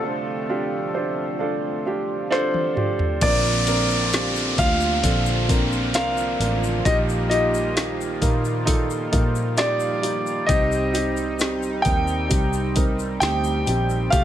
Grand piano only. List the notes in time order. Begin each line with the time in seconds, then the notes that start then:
Already playing: A4
2.32 C5
3.22 D5
4.59 F5
5.95 F5
6.85 D#5
7.30 D#5
9.58 D5
10.46 D#5
11.82 G5
13.20 G5
14.10 F5